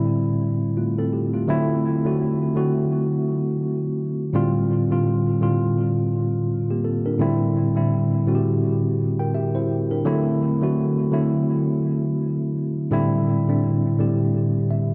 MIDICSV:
0, 0, Header, 1, 2, 480
1, 0, Start_track
1, 0, Tempo, 714286
1, 999, Time_signature, 4, 2, 24, 8
1, 10042, End_track
2, 0, Start_track
2, 0, Title_t, "Tine electric piano"
2, 0, Program_c, 0, 4
2, 0, Control_c, 0, 64, 127
2, 0, Note_on_c, 0, 45, 73
2, 0, Note_on_c, 0, 50, 65
2, 0, Note_on_c, 0, 55, 69
2, 0, Note_on_c, 0, 60, 66
2, 0, Note_on_c, 0, 64, 78
2, 518, Note_off_c, 0, 60, 0
2, 518, Note_on_c, 0, 65, 56
2, 520, Note_off_c, 0, 64, 0
2, 524, Note_on_c, 0, 57, 50
2, 650, Note_off_c, 0, 65, 0
2, 653, Note_off_c, 0, 57, 0
2, 662, Note_on_c, 0, 69, 69
2, 664, Note_off_c, 0, 45, 0
2, 666, Note_on_c, 0, 60, 62
2, 667, Note_off_c, 0, 50, 0
2, 668, Note_off_c, 0, 55, 0
2, 756, Note_off_c, 0, 69, 0
2, 758, Note_off_c, 0, 60, 0
2, 759, Note_on_c, 0, 67, 60
2, 890, Note_off_c, 0, 67, 0
2, 898, Note_on_c, 0, 65, 60
2, 904, Note_on_c, 0, 57, 49
2, 992, Note_off_c, 0, 57, 0
2, 994, Note_on_c, 0, 50, 89
2, 997, Note_on_c, 0, 54, 91
2, 1000, Note_on_c, 0, 57, 85
2, 1004, Note_on_c, 0, 60, 90
2, 1007, Control_c, 0, 64, 0
2, 1008, Note_on_c, 0, 64, 109
2, 1121, Control_c, 0, 64, 127
2, 1126, Note_off_c, 0, 65, 0
2, 1330, Note_off_c, 0, 50, 0
2, 1331, Note_off_c, 0, 54, 0
2, 1333, Note_off_c, 0, 57, 0
2, 1335, Note_off_c, 0, 60, 0
2, 1337, Note_off_c, 0, 64, 0
2, 1374, Note_on_c, 0, 50, 69
2, 1378, Note_on_c, 0, 54, 66
2, 1380, Note_on_c, 0, 57, 64
2, 1383, Note_on_c, 0, 60, 64
2, 1389, Note_on_c, 0, 66, 74
2, 1684, Note_off_c, 0, 50, 0
2, 1686, Note_off_c, 0, 54, 0
2, 1687, Note_off_c, 0, 57, 0
2, 1688, Note_off_c, 0, 60, 0
2, 1691, Note_off_c, 0, 66, 0
2, 1713, Note_on_c, 0, 50, 69
2, 1719, Note_on_c, 0, 54, 62
2, 1720, Note_on_c, 0, 57, 65
2, 1724, Note_on_c, 0, 60, 67
2, 1726, Note_on_c, 0, 66, 78
2, 2588, Note_off_c, 0, 50, 0
2, 2590, Note_off_c, 0, 54, 0
2, 2591, Note_off_c, 0, 57, 0
2, 2593, Note_off_c, 0, 60, 0
2, 2594, Note_off_c, 0, 66, 0
2, 2912, Note_on_c, 0, 45, 99
2, 2918, Note_on_c, 0, 50, 89
2, 2920, Note_on_c, 0, 55, 92
2, 2923, Note_on_c, 0, 60, 86
2, 2927, Note_on_c, 0, 65, 106
2, 2928, Control_c, 0, 64, 0
2, 3051, Control_c, 0, 64, 127
2, 3248, Note_off_c, 0, 45, 0
2, 3252, Note_off_c, 0, 50, 0
2, 3253, Note_off_c, 0, 55, 0
2, 3254, Note_off_c, 0, 60, 0
2, 3256, Note_off_c, 0, 65, 0
2, 3295, Note_on_c, 0, 45, 69
2, 3297, Note_on_c, 0, 50, 69
2, 3301, Note_on_c, 0, 55, 64
2, 3304, Note_on_c, 0, 60, 60
2, 3307, Note_on_c, 0, 65, 79
2, 3604, Note_off_c, 0, 45, 0
2, 3605, Note_off_c, 0, 50, 0
2, 3607, Note_off_c, 0, 55, 0
2, 3609, Note_off_c, 0, 60, 0
2, 3610, Note_off_c, 0, 65, 0
2, 3634, Note_on_c, 0, 45, 74
2, 3638, Note_on_c, 0, 50, 63
2, 3642, Note_on_c, 0, 55, 72
2, 3645, Note_on_c, 0, 60, 64
2, 3649, Note_on_c, 0, 65, 87
2, 4362, Note_off_c, 0, 60, 0
2, 4364, Note_off_c, 0, 65, 0
2, 4506, Note_on_c, 0, 67, 64
2, 4508, Note_off_c, 0, 45, 0
2, 4509, Note_on_c, 0, 58, 52
2, 4510, Note_off_c, 0, 50, 0
2, 4512, Note_off_c, 0, 55, 0
2, 4598, Note_off_c, 0, 67, 0
2, 4600, Note_off_c, 0, 58, 0
2, 4600, Note_on_c, 0, 69, 60
2, 4603, Note_on_c, 0, 60, 51
2, 4731, Note_off_c, 0, 69, 0
2, 4733, Note_off_c, 0, 60, 0
2, 4743, Note_on_c, 0, 70, 62
2, 4745, Note_on_c, 0, 62, 54
2, 4833, Note_on_c, 0, 45, 94
2, 4838, Note_on_c, 0, 50, 92
2, 4842, Note_on_c, 0, 55, 81
2, 4845, Note_on_c, 0, 60, 91
2, 4847, Control_c, 0, 64, 0
2, 4849, Note_on_c, 0, 64, 102
2, 4967, Control_c, 0, 64, 127
2, 4968, Note_off_c, 0, 70, 0
2, 4970, Note_off_c, 0, 62, 0
2, 5169, Note_off_c, 0, 45, 0
2, 5172, Note_off_c, 0, 50, 0
2, 5174, Note_off_c, 0, 55, 0
2, 5175, Note_off_c, 0, 60, 0
2, 5177, Note_off_c, 0, 64, 0
2, 5207, Note_on_c, 0, 45, 70
2, 5210, Note_on_c, 0, 50, 61
2, 5212, Note_on_c, 0, 55, 63
2, 5217, Note_on_c, 0, 60, 67
2, 5221, Note_on_c, 0, 64, 77
2, 5520, Note_off_c, 0, 45, 0
2, 5522, Note_off_c, 0, 50, 0
2, 5523, Note_off_c, 0, 55, 0
2, 5525, Note_off_c, 0, 60, 0
2, 5527, Note_off_c, 0, 64, 0
2, 5554, Note_on_c, 0, 45, 71
2, 5557, Note_on_c, 0, 50, 61
2, 5560, Note_on_c, 0, 55, 67
2, 5565, Note_on_c, 0, 60, 69
2, 5567, Note_on_c, 0, 66, 67
2, 5611, Note_on_c, 0, 67, 84
2, 5613, Note_off_c, 0, 66, 0
2, 6065, Note_off_c, 0, 67, 0
2, 6179, Note_on_c, 0, 79, 60
2, 6184, Note_on_c, 0, 70, 52
2, 6274, Note_off_c, 0, 79, 0
2, 6277, Note_off_c, 0, 70, 0
2, 6280, Note_on_c, 0, 76, 61
2, 6284, Note_on_c, 0, 67, 55
2, 6411, Note_off_c, 0, 76, 0
2, 6413, Note_off_c, 0, 67, 0
2, 6417, Note_on_c, 0, 72, 69
2, 6422, Note_on_c, 0, 64, 57
2, 6428, Note_off_c, 0, 45, 0
2, 6429, Note_off_c, 0, 50, 0
2, 6431, Note_off_c, 0, 55, 0
2, 6433, Note_off_c, 0, 60, 0
2, 6645, Note_off_c, 0, 72, 0
2, 6648, Note_off_c, 0, 64, 0
2, 6661, Note_on_c, 0, 70, 63
2, 6664, Note_on_c, 0, 62, 51
2, 6752, Note_on_c, 0, 50, 105
2, 6756, Note_on_c, 0, 54, 97
2, 6759, Note_on_c, 0, 57, 96
2, 6762, Note_on_c, 0, 60, 95
2, 6766, Control_c, 0, 64, 0
2, 6766, Note_on_c, 0, 64, 101
2, 6864, Control_c, 0, 64, 127
2, 6888, Note_off_c, 0, 70, 0
2, 6889, Note_off_c, 0, 62, 0
2, 7089, Note_off_c, 0, 50, 0
2, 7090, Note_off_c, 0, 54, 0
2, 7092, Note_off_c, 0, 57, 0
2, 7094, Note_off_c, 0, 60, 0
2, 7096, Note_off_c, 0, 64, 0
2, 7133, Note_on_c, 0, 50, 73
2, 7135, Note_on_c, 0, 54, 63
2, 7139, Note_on_c, 0, 57, 68
2, 7143, Note_on_c, 0, 60, 66
2, 7146, Note_on_c, 0, 66, 79
2, 7443, Note_off_c, 0, 50, 0
2, 7444, Note_off_c, 0, 54, 0
2, 7446, Note_off_c, 0, 57, 0
2, 7448, Note_off_c, 0, 60, 0
2, 7450, Note_off_c, 0, 66, 0
2, 7470, Note_on_c, 0, 50, 73
2, 7473, Note_on_c, 0, 54, 71
2, 7476, Note_on_c, 0, 57, 69
2, 7480, Note_on_c, 0, 60, 62
2, 7484, Note_on_c, 0, 64, 80
2, 8346, Note_off_c, 0, 50, 0
2, 8348, Note_off_c, 0, 54, 0
2, 8349, Note_off_c, 0, 57, 0
2, 8351, Note_off_c, 0, 60, 0
2, 8353, Note_off_c, 0, 64, 0
2, 8675, Note_on_c, 0, 45, 102
2, 8678, Note_on_c, 0, 50, 99
2, 8682, Note_on_c, 0, 55, 99
2, 8685, Note_on_c, 0, 60, 93
2, 8687, Control_c, 0, 64, 0
2, 8690, Note_on_c, 0, 64, 110
2, 8787, Control_c, 0, 64, 127
2, 9010, Note_off_c, 0, 45, 0
2, 9012, Note_off_c, 0, 50, 0
2, 9014, Note_off_c, 0, 55, 0
2, 9015, Note_off_c, 0, 60, 0
2, 9018, Note_off_c, 0, 64, 0
2, 9056, Note_on_c, 0, 45, 77
2, 9060, Note_on_c, 0, 50, 62
2, 9064, Note_on_c, 0, 55, 62
2, 9068, Note_on_c, 0, 60, 69
2, 9071, Note_on_c, 0, 62, 71
2, 9365, Note_off_c, 0, 45, 0
2, 9367, Note_off_c, 0, 50, 0
2, 9369, Note_off_c, 0, 55, 0
2, 9371, Note_off_c, 0, 60, 0
2, 9372, Note_off_c, 0, 62, 0
2, 9397, Note_on_c, 0, 45, 80
2, 9399, Note_on_c, 0, 50, 69
2, 9402, Note_on_c, 0, 55, 66
2, 9407, Note_on_c, 0, 60, 65
2, 9411, Note_on_c, 0, 67, 81
2, 9882, Note_on_c, 0, 76, 61
2, 10042, Note_off_c, 0, 45, 0
2, 10042, Note_off_c, 0, 50, 0
2, 10042, Note_off_c, 0, 55, 0
2, 10042, Note_off_c, 0, 60, 0
2, 10042, Note_off_c, 0, 67, 0
2, 10042, Note_off_c, 0, 76, 0
2, 10042, End_track
0, 0, End_of_file